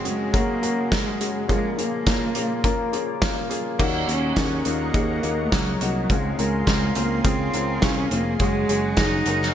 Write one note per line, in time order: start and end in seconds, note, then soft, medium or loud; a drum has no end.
0.00 1.45 F#2 soft
0.00 1.47 F#2 medium
0.00 1.45 C#3 soft
0.00 3.76 C#3 medium
0.00 1.47 F#3 medium
0.00 0.04 G#3 medium
0.00 3.76 G#3 medium
0.00 0.04 C#4 medium
0.00 0.05 F#4 medium
0.00 0.05 G#4 medium
0.04 0.31 G#3 medium
0.04 0.38 G#3 medium
0.04 0.31 C#4 medium
0.04 0.31 F#4 medium
0.04 0.31 G#4 medium
0.04 closed hi-hat medium
0.32 0.59 G#3 medium
0.32 0.59 C#4 medium
0.32 0.59 F#4 medium
0.32 0.60 A#4 medium
0.32 kick medium
0.32 closed hi-hat medium
0.37 0.95 A#3 medium
0.62 0.88 G#3 medium
0.62 0.88 C#4 medium
0.62 0.88 F#4 medium
0.62 0.88 A#4 medium
0.62 closed hi-hat medium
0.92 1.17 G#3 medium
0.92 1.50 G#3 medium
0.92 1.18 C#4 soft
0.92 1.18 F#4 medium
0.92 1.18 G#4 medium
0.92 kick medium
0.92 snare medium
0.92 closed hi-hat medium
1.20 1.46 G#3 medium
1.20 1.46 C#4 medium
1.20 1.46 F#4 medium
1.20 1.46 G#4 medium
1.20 closed hi-hat medium
1.48 3.77 A#2 medium
1.48 3.75 A#2 soft
1.48 3.75 F3 medium
1.48 3.77 F3 medium
1.48 1.75 A#3 medium
1.48 1.74 C#4 medium
1.48 1.75 F4 medium
1.48 1.75 G#4 medium
1.48 kick medium
1.48 closed hi-hat medium
1.52 1.78 G#3 medium
1.78 2.04 A#3 medium
1.78 2.90 A#3 medium
1.78 2.04 C#4 medium
1.78 2.04 F4 medium
1.78 2.04 G#4 medium
1.78 closed hi-hat medium
2.06 2.32 A#3 medium
2.06 2.32 C#4 medium
2.06 2.32 F4 medium
2.06 2.33 A#4 medium
2.06 kick medium
2.06 snare medium
2.06 closed hi-hat medium
2.35 2.61 A#3 medium
2.35 2.61 C#4 medium
2.35 2.62 F4 medium
2.35 2.62 G#4 medium
2.35 closed hi-hat medium
2.64 2.90 A#3 medium
2.64 2.90 C#4 medium
2.64 2.90 F4 medium
2.64 2.90 A#4 medium
2.64 kick medium
2.64 closed hi-hat medium
2.92 3.19 A#3 medium
2.92 3.19 C#4 medium
2.92 3.19 F4 medium
2.92 3.19 G#4 medium
2.92 closed hi-hat medium
3.21 3.47 A#3 medium
3.21 3.47 C#4 medium
3.21 3.47 F4 medium
3.21 3.48 A#4 medium
3.21 kick loud
3.21 snare medium
3.21 closed hi-hat medium
3.49 3.76 A#3 medium
3.49 3.76 C#4 medium
3.49 3.76 F4 medium
3.49 3.76 G#4 medium
3.49 closed hi-hat medium
3.79 4.03 D#2 medium
3.79 4.62 A#2 medium
3.79 4.05 A#3 medium
3.79 4.05 C#4 medium
3.79 4.05 D#4 medium
3.79 4.05 F#4 loud
3.79 6.07 A#4 medium
3.79 6.08 D#5 medium
3.79 6.07 F#5 medium
3.79 6.07 C#6 medium
3.79 kick medium
3.79 crash medium
4.08 4.32 D#2 medium
4.08 4.34 A#3 medium
4.08 4.34 C#4 medium
4.08 4.68 C#4 medium
4.08 4.34 D#4 soft
4.08 4.34 F#4 medium
4.08 closed hi-hat medium
4.36 4.60 D#2 medium
4.36 4.62 A#3 medium
4.36 4.63 C#4 medium
4.36 4.63 D#4 medium
4.36 4.63 G#4 medium
4.36 kick medium
4.36 snare medium
4.36 closed hi-hat medium
4.65 4.90 D#2 medium
4.65 4.91 A#3 medium
4.65 5.56 A#3 medium
4.65 4.92 C#4 medium
4.65 4.92 D#4 medium
4.65 4.92 F4 medium
4.65 closed hi-hat medium
4.94 5.18 D#2 medium
4.94 5.20 A#3 medium
4.94 5.20 C#4 medium
4.94 5.20 D#4 medium
4.94 5.20 G#4 medium
4.94 kick loud
4.94 closed hi-hat medium
5.23 5.47 D#2 medium
5.23 5.49 A#3 medium
5.23 5.49 C#4 medium
5.23 5.49 D#4 medium
5.23 5.49 G#4 medium
5.23 closed hi-hat medium
5.52 5.76 C#2 medium
5.52 6.13 F#3 medium
5.52 5.78 A#3 medium
5.52 5.78 C#4 medium
5.52 5.78 D#4 medium
5.52 5.78 G#4 medium
5.52 kick loud
5.52 snare loud
5.52 closed hi-hat medium
5.81 6.05 C2 medium
5.81 6.07 A#3 medium
5.81 6.07 C#4 medium
5.81 6.07 D#4 medium
5.81 6.07 F#4 medium
5.81 closed hi-hat medium
6.10 6.33 C#2 medium
6.10 6.92 G#2 medium
6.10 6.39 G#3 medium
6.10 6.36 C4 medium
6.10 6.36 C#4 medium
6.10 6.36 F4 medium
6.10 9.54 G#4 medium
6.10 6.36 G#4 medium
6.10 8.38 F5 medium
6.10 8.38 C6 medium
6.10 kick medium
6.10 closed hi-hat medium
6.38 6.62 C#2 medium
6.38 6.99 G#3 medium
6.38 6.64 C4 medium
6.38 6.64 C#4 medium
6.38 6.64 F4 medium
6.38 6.64 A#4 medium
6.38 closed hi-hat medium
6.67 6.91 C#2 medium
6.67 6.93 C4 medium
6.67 6.93 C#4 medium
6.67 6.93 F4 medium
6.67 6.93 A#4 medium
6.67 kick medium
6.67 snare medium
6.67 closed hi-hat medium
6.95 7.20 C#2 medium
6.95 7.27 A#3 medium
6.95 7.21 C4 medium
6.95 7.22 C#4 medium
6.95 7.22 F4 medium
6.95 7.22 A#4 medium
6.95 closed hi-hat medium
7.24 7.48 C#2 medium
7.24 7.50 C4 medium
7.24 7.85 C4 medium
7.24 7.50 C#4 medium
7.24 7.51 F4 medium
7.24 7.51 G#4 medium
7.24 kick loud
7.24 closed hi-hat medium
7.54 7.78 C#2 medium
7.54 7.79 C4 medium
7.54 7.79 C#4 medium
7.54 7.80 F4 medium
7.54 7.80 A#4 medium
7.54 closed hi-hat medium
7.82 8.06 C2 medium
7.82 8.08 C4 medium
7.82 8.08 C#4 medium
7.82 8.11 C#4 medium
7.82 8.08 F4 medium
7.82 8.08 G#4 medium
7.82 kick medium
7.82 snare loud
7.82 closed hi-hat medium
8.11 8.35 F1 medium
8.11 8.38 A#3 medium
8.11 8.37 C4 medium
8.11 8.37 C#4 medium
8.11 8.37 F4 medium
8.11 8.38 G#4 medium
8.11 closed hi-hat medium
8.40 8.64 F#1 loud
8.40 9.22 C#3 medium
8.40 8.66 G#3 medium
8.40 8.99 G#3 medium
8.40 8.66 C#4 medium
8.40 8.66 F#4 medium
8.40 8.66 G#4 medium
8.40 9.54 F#5 medium
8.40 9.54 C#6 medium
8.40 kick medium
8.40 closed hi-hat medium
8.69 8.92 F#1 medium
8.69 8.94 G#3 medium
8.69 8.95 C#4 medium
8.69 8.95 F#4 medium
8.69 8.95 G#4 medium
8.69 closed hi-hat medium
8.97 9.21 F#1 medium
8.97 9.23 G#3 medium
8.97 9.23 C#4 medium
8.97 9.54 D#4 medium
8.97 9.24 F#4 medium
8.97 9.24 G#4 medium
8.97 kick medium
8.97 snare medium
8.97 closed hi-hat medium
9.26 9.50 F#1 medium
9.26 9.52 G#3 medium
9.26 9.52 C#4 medium
9.26 9.52 F#4 medium
9.26 9.52 A#4 medium
9.26 closed hi-hat medium
9.42 snare soft